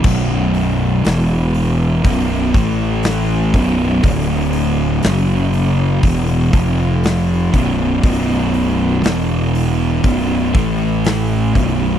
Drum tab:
CC |x-------|--------|--------|
HH |-ooooooo|oooooooo|oooooooo|
SD |--o---o-|--o---o-|--o---o-|
BD |o---oo-o|o---oo-o|o---oo-o|